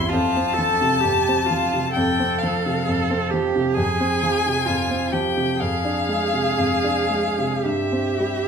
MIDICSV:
0, 0, Header, 1, 4, 480
1, 0, Start_track
1, 0, Tempo, 914634
1, 56, Time_signature, 4, 2, 24, 8
1, 2937, Tempo, 980392
1, 3417, Tempo, 1069519
1, 4271, End_track
2, 0, Start_track
2, 0, Title_t, "Violin"
2, 0, Program_c, 0, 40
2, 0, Note_on_c, 0, 84, 78
2, 48, Note_on_c, 0, 81, 80
2, 56, Note_off_c, 0, 84, 0
2, 1008, Note_off_c, 0, 81, 0
2, 1011, Note_on_c, 0, 79, 73
2, 1252, Note_on_c, 0, 77, 57
2, 1260, Note_off_c, 0, 79, 0
2, 1735, Note_off_c, 0, 77, 0
2, 1968, Note_on_c, 0, 80, 74
2, 2688, Note_on_c, 0, 79, 62
2, 2696, Note_off_c, 0, 80, 0
2, 2936, Note_on_c, 0, 77, 70
2, 2944, Note_off_c, 0, 79, 0
2, 3898, Note_on_c, 0, 76, 52
2, 3904, Note_off_c, 0, 77, 0
2, 4271, Note_off_c, 0, 76, 0
2, 4271, End_track
3, 0, Start_track
3, 0, Title_t, "Cello"
3, 0, Program_c, 1, 42
3, 0, Note_on_c, 1, 64, 64
3, 46, Note_on_c, 1, 65, 60
3, 53, Note_off_c, 1, 64, 0
3, 281, Note_on_c, 1, 69, 67
3, 289, Note_off_c, 1, 65, 0
3, 526, Note_on_c, 1, 67, 57
3, 534, Note_off_c, 1, 69, 0
3, 765, Note_on_c, 1, 65, 56
3, 773, Note_off_c, 1, 67, 0
3, 1007, Note_off_c, 1, 65, 0
3, 1010, Note_on_c, 1, 69, 56
3, 1486, Note_off_c, 1, 69, 0
3, 1500, Note_on_c, 1, 69, 58
3, 1736, Note_on_c, 1, 67, 62
3, 1743, Note_off_c, 1, 69, 0
3, 1968, Note_on_c, 1, 68, 65
3, 1976, Note_off_c, 1, 67, 0
3, 2443, Note_on_c, 1, 65, 52
3, 2451, Note_off_c, 1, 68, 0
3, 2686, Note_on_c, 1, 67, 50
3, 2694, Note_off_c, 1, 65, 0
3, 2921, Note_on_c, 1, 68, 58
3, 2928, Note_off_c, 1, 67, 0
3, 3888, Note_on_c, 1, 67, 53
3, 3895, Note_off_c, 1, 68, 0
3, 4271, Note_off_c, 1, 67, 0
3, 4271, End_track
4, 0, Start_track
4, 0, Title_t, "Grand piano"
4, 0, Program_c, 2, 0
4, 0, Control_c, 2, 64, 127
4, 0, Note_on_c, 2, 33, 46
4, 0, Note_on_c, 2, 40, 44
4, 0, Note_on_c, 2, 55, 43
4, 0, Note_on_c, 2, 60, 44
4, 62, Note_off_c, 2, 40, 0
4, 64, Control_c, 2, 64, 0
4, 66, Note_off_c, 2, 55, 0
4, 67, Note_on_c, 2, 41, 57
4, 68, Note_off_c, 2, 60, 0
4, 69, Note_off_c, 2, 33, 0
4, 155, Control_c, 2, 64, 127
4, 189, Note_on_c, 2, 60, 40
4, 307, Note_on_c, 2, 53, 42
4, 372, Note_off_c, 2, 60, 0
4, 427, Note_on_c, 2, 48, 47
4, 492, Note_off_c, 2, 53, 0
4, 539, Note_off_c, 2, 41, 0
4, 547, Note_on_c, 2, 41, 47
4, 614, Note_off_c, 2, 48, 0
4, 672, Note_on_c, 2, 60, 44
4, 790, Note_on_c, 2, 53, 41
4, 859, Note_off_c, 2, 60, 0
4, 910, Note_on_c, 2, 48, 41
4, 978, Note_off_c, 2, 53, 0
4, 1024, Note_off_c, 2, 41, 0
4, 1032, Note_on_c, 2, 41, 53
4, 1098, Note_off_c, 2, 48, 0
4, 1151, Note_on_c, 2, 60, 42
4, 1277, Note_on_c, 2, 53, 40
4, 1338, Note_off_c, 2, 60, 0
4, 1395, Note_on_c, 2, 48, 38
4, 1461, Note_off_c, 2, 53, 0
4, 1505, Note_off_c, 2, 41, 0
4, 1513, Note_on_c, 2, 41, 42
4, 1580, Note_off_c, 2, 48, 0
4, 1627, Note_on_c, 2, 60, 42
4, 1750, Note_on_c, 2, 53, 43
4, 1814, Note_off_c, 2, 60, 0
4, 1866, Note_on_c, 2, 48, 44
4, 1934, Note_off_c, 2, 53, 0
4, 1968, Note_off_c, 2, 41, 0
4, 1977, Note_on_c, 2, 41, 54
4, 1980, Note_off_c, 2, 48, 0
4, 1984, Control_c, 2, 64, 0
4, 2065, Control_c, 2, 64, 127
4, 2100, Note_on_c, 2, 60, 41
4, 2220, Note_on_c, 2, 53, 40
4, 2287, Note_off_c, 2, 60, 0
4, 2342, Note_on_c, 2, 48, 40
4, 2407, Note_off_c, 2, 53, 0
4, 2449, Note_off_c, 2, 41, 0
4, 2457, Note_on_c, 2, 41, 42
4, 2528, Note_off_c, 2, 48, 0
4, 2574, Note_on_c, 2, 60, 41
4, 2695, Note_on_c, 2, 53, 38
4, 2766, Note_off_c, 2, 60, 0
4, 2819, Note_on_c, 2, 48, 37
4, 2888, Note_off_c, 2, 53, 0
4, 2924, Note_off_c, 2, 41, 0
4, 2939, Note_off_c, 2, 48, 0
4, 2945, Control_c, 2, 64, 0
4, 2945, Note_on_c, 2, 41, 51
4, 3029, Control_c, 2, 64, 127
4, 3060, Note_on_c, 2, 62, 40
4, 3177, Note_on_c, 2, 56, 32
4, 3247, Note_off_c, 2, 62, 0
4, 3298, Note_on_c, 2, 48, 33
4, 3369, Note_off_c, 2, 56, 0
4, 3413, Note_off_c, 2, 41, 0
4, 3420, Note_on_c, 2, 41, 39
4, 3488, Note_off_c, 2, 48, 0
4, 3536, Note_on_c, 2, 62, 36
4, 3654, Note_on_c, 2, 56, 37
4, 3725, Note_off_c, 2, 62, 0
4, 3779, Note_on_c, 2, 48, 36
4, 3845, Note_off_c, 2, 56, 0
4, 3880, Note_off_c, 2, 41, 0
4, 3897, Note_off_c, 2, 48, 0
4, 3897, Note_on_c, 2, 43, 40
4, 3903, Control_c, 2, 64, 0
4, 3981, Control_c, 2, 64, 127
4, 4020, Note_on_c, 2, 60, 33
4, 4144, Note_on_c, 2, 55, 35
4, 4211, Note_off_c, 2, 60, 0
4, 4271, Note_off_c, 2, 43, 0
4, 4271, Note_off_c, 2, 55, 0
4, 4271, End_track
0, 0, End_of_file